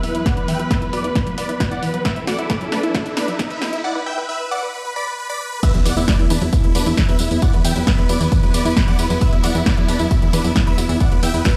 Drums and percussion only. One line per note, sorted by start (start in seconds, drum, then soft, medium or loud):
0.03 open hi-hat medium
0.15 closed hi-hat medium
0.26 kick loud
0.26 snare medium
0.26 closed hi-hat medium
0.37 closed hi-hat medium
0.48 open hi-hat loud
0.59 closed hi-hat soft
0.71 kick loud
0.71 snare medium
0.71 closed hi-hat medium
0.82 closed hi-hat soft
0.93 open hi-hat medium
1.04 closed hi-hat soft
1.15 kick loud
1.15 snare medium
1.15 closed hi-hat medium
1.27 closed hi-hat medium
1.38 open hi-hat loud
1.49 closed hi-hat medium
1.60 kick loud
1.60 snare medium
1.60 closed hi-hat medium
1.71 closed hi-hat medium
1.83 open hi-hat medium
1.94 closed hi-hat medium
2.05 kick loud
2.05 snare medium
2.05 closed hi-hat medium
2.16 closed hi-hat medium
2.27 snare medium
2.27 open hi-hat loud
2.39 closed hi-hat soft
2.50 kick loud
2.50 snare medium
2.50 closed hi-hat medium
2.61 closed hi-hat soft
2.72 snare medium
2.72 open hi-hat medium
2.83 closed hi-hat soft
2.95 kick loud
2.95 snare medium
2.95 closed hi-hat medium
3.06 closed hi-hat medium
3.17 snare medium
3.17 open hi-hat loud
3.28 closed hi-hat medium
3.39 kick loud
3.39 snare medium
3.39 closed hi-hat medium
3.50 closed hi-hat soft
3.62 snare medium
3.62 open hi-hat loud
3.73 closed hi-hat medium
5.63 kick loud
5.63 closed hi-hat loud
5.63 tambourine soft
5.63 crash loud
5.74 closed hi-hat medium
5.86 open hi-hat loud
5.86 tambourine medium
5.97 closed hi-hat medium
5.97 tambourine medium
6.08 kick loud
6.08 snare loud
6.08 closed hi-hat medium
6.08 tambourine soft
6.19 closed hi-hat medium
6.30 open hi-hat medium
6.30 tambourine medium
6.42 closed hi-hat medium
6.42 tambourine soft
6.53 kick loud
6.53 closed hi-hat loud
6.53 tambourine soft
6.64 closed hi-hat medium
6.75 open hi-hat loud
6.75 tambourine medium
6.86 closed hi-hat medium
6.86 tambourine medium
6.97 kick loud
6.97 snare loud
6.97 closed hi-hat medium
6.97 tambourine soft
7.09 closed hi-hat medium
7.19 open hi-hat medium
7.19 tambourine loud
7.31 closed hi-hat medium
7.31 tambourine medium
7.42 kick loud
7.42 closed hi-hat loud
7.42 tambourine soft
7.53 closed hi-hat medium
7.65 open hi-hat loud
7.65 tambourine loud
7.76 closed hi-hat medium
7.76 tambourine medium
7.87 kick loud
7.87 snare loud
7.87 closed hi-hat medium
7.98 closed hi-hat medium
8.09 open hi-hat medium
8.09 tambourine loud
8.21 closed hi-hat medium
8.21 tambourine medium
8.32 kick loud
8.32 closed hi-hat loud
8.32 tambourine soft
8.43 closed hi-hat medium
8.54 open hi-hat loud
8.54 tambourine loud
8.65 closed hi-hat medium
8.65 tambourine medium
8.77 kick loud
8.77 snare loud
8.77 closed hi-hat medium
8.77 tambourine soft
8.88 closed hi-hat medium
8.99 open hi-hat loud
8.99 tambourine medium
9.10 closed hi-hat medium
9.10 tambourine medium
9.21 kick loud
9.21 closed hi-hat medium
9.21 tambourine soft
9.33 closed hi-hat medium
9.43 open hi-hat loud
9.43 tambourine loud
9.55 closed hi-hat soft
9.55 tambourine medium
9.66 kick loud
9.66 snare loud
9.66 closed hi-hat medium
9.66 tambourine soft
9.77 closed hi-hat medium
9.88 open hi-hat medium
9.88 tambourine medium
9.99 closed hi-hat soft
9.99 tambourine medium
10.11 kick loud
10.11 closed hi-hat medium
10.11 tambourine soft
10.22 closed hi-hat medium
10.33 open hi-hat loud
10.33 tambourine medium
10.44 closed hi-hat medium
10.44 tambourine medium
10.56 kick loud
10.56 snare loud
10.56 closed hi-hat medium
10.56 tambourine soft
10.67 closed hi-hat medium
10.78 open hi-hat loud
10.78 tambourine loud
10.89 closed hi-hat medium
10.89 tambourine medium
11.00 kick loud
11.00 closed hi-hat medium
11.00 tambourine soft
11.12 closed hi-hat medium
11.23 open hi-hat loud
11.23 tambourine medium
11.34 closed hi-hat medium
11.34 tambourine medium
11.45 kick loud
11.45 snare loud
11.45 closed hi-hat medium
11.45 tambourine soft